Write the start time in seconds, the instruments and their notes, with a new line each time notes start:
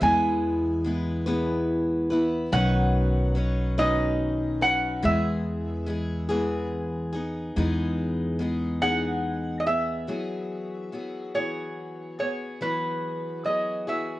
0.01 upright bass E2, steel-string acoustic guitar E3 G#3 B3 E4 B4, resonator guitar played with a steel bar G#5
0.85 steel-string acoustic guitar G#3 B3 E4 B4
1.26 steel-string acoustic guitar E3 G#3 B3 E4 B4
2.10 steel-string acoustic guitar B3 E4 B4
2.52 upright bass B1, steel-string acoustic guitar B2 D#3 F#3 C#4 D#4 B4, resonator guitar played with a steel bar F#5
3.35 steel-string acoustic guitar F#3 C#4 D#4 B4
3.78 steel-string acoustic guitar B2 D#3 F#3 C#4 D#4 B4, resonator guitar played with a steel bar D#5
4.61 steel-string acoustic guitar F#3 C#4 D#4 B4, resonator guitar played with a steel bar F#5
5.03 upright bass E2, steel-string acoustic guitar E3 G#3 B3 G#4, resonator guitar played with a steel bar E5
5.86 steel-string acoustic guitar G#3 B3 G#4
6.29 steel-string acoustic guitar E3 G#3 B3 G#4
7.13 steel-string acoustic guitar B3 D#4 G#4
7.56 upright bass E2, steel-string acoustic guitar E3 G#3 B3 D#4 G#4
8.39 steel-string acoustic guitar G#3 B3 D#4 G#4
8.82 steel-string acoustic guitar E3 G#3 B3 D#4 G#4, resonator guitar played with a steel bar F#5
9.60 resonator guitar played with a steel bar D#5
9.66 steel-string acoustic guitar B3 G#4, resonator guitar played with a steel bar E5
10.07 steel-string acoustic guitar E3 F#3 B3 F#4 G#4
10.92 steel-string acoustic guitar F#3 B3 F#4 G#4
11.35 steel-string acoustic guitar E3 F#3 B3 F#4 G#4, resonator guitar played with a steel bar C#5
12.19 steel-string acoustic guitar B3 F#4 G#4, resonator guitar played with a steel bar C#5
12.61 steel-string acoustic guitar E3 F#3 B3 F#4 G#4, resonator guitar played with a steel bar B4
13.44 steel-string acoustic guitar F#3 B3 F#4 G#4, resonator guitar played with a steel bar D#5
13.87 steel-string acoustic guitar E3 F#3 B3 F#4 G#4, resonator guitar played with a steel bar E5